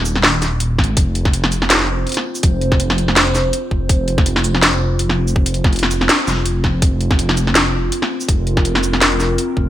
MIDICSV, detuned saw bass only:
0, 0, Header, 1, 2, 480
1, 0, Start_track
1, 0, Tempo, 365854
1, 1271, Time_signature, 4, 2, 24, 8
1, 12713, End_track
2, 0, Start_track
2, 0, Title_t, "Detuned saw bass"
2, 0, Program_c, 0, 39
2, 0, Note_on_c, 0, 27, 100
2, 1014, Note_off_c, 0, 27, 0
2, 1030, Note_on_c, 0, 32, 95
2, 1253, Note_off_c, 0, 32, 0
2, 1269, Note_on_c, 0, 29, 98
2, 2693, Note_off_c, 0, 29, 0
2, 3192, Note_on_c, 0, 29, 98
2, 4615, Note_off_c, 0, 29, 0
2, 4870, Note_on_c, 0, 29, 96
2, 5094, Note_off_c, 0, 29, 0
2, 5110, Note_on_c, 0, 29, 97
2, 6533, Note_off_c, 0, 29, 0
2, 6552, Note_on_c, 0, 29, 91
2, 7975, Note_off_c, 0, 29, 0
2, 8230, Note_on_c, 0, 29, 98
2, 8934, Note_off_c, 0, 29, 0
2, 8950, Note_on_c, 0, 29, 92
2, 10373, Note_off_c, 0, 29, 0
2, 10871, Note_on_c, 0, 29, 101
2, 12294, Note_off_c, 0, 29, 0
2, 12553, Note_on_c, 0, 29, 91
2, 12713, Note_off_c, 0, 29, 0
2, 12713, End_track
0, 0, End_of_file